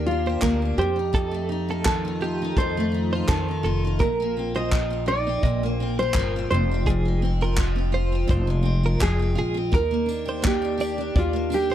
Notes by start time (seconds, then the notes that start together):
Already playing: D#2 D#3 A#3 G4
0.06 D4 F4
0.26 G4 C5
0.42 D2 A#3 A#4, kick, clap
0.62 D4
0.78 F2 G4 C5
0.96 D#4
1.13 F2 A4, kick
1.31 A3
1.49 D#4
1.69 F4 A4
1.85 D#3 A4, kick, clap
2.05 D#4
2.21 F4 G4
2.42 D#4
2.57 F2 A4 C5, kick
2.77 A3
2.92 D#4
3.13 F4 C5
3.28 F2 D#3 A4 C5, kick, clap
3.48 D#4
3.63 F1 F4 A4
3.85 D#4
3.99 A#1 A#2 A#4, kick
4.20 A#3
4.37 C4
4.55 F4 C5 D#5
4.71 F3, kick, clap
4.90 C4
5.06 D#4 F4 D5
5.27 C4
5.43 A#1 A#2 D#5, kick
5.63 A#3
5.75 C5
5.80 C4
5.99 F4 C5
6.14 G1 F3 A#4, kick, clap
6.36 C4
6.51 F1 F2 C5
6.71 C4
6.86 F2 G#4, kick
7.05 G#3
7.22 C4
7.41 F4 A#4
7.56 F3, kick, clap
7.76 C4
7.92 F4 C5
8.12 C4
8.28 F1 F2 C5, kick
8.47 G#3
8.63 C4
8.83 F4 A#4
8.99 F1 F3 G#4, kick, clap
9.19 C4
9.35 A#1 F4 G#4
9.54 C4
9.72 D#2 D#3 A#4, kick
9.91 A#3
10.06 D4, tambourine
10.25 G4 C5
10.42 A#3, kick, clap
10.47 G4
10.62 D4
10.78 G4 D5, tambourine
10.98 D4
11.15 D#2 F4 D5, kick
11.33 A#3
11.50 D4, tambourine
11.54 G4
11.70 G4 C5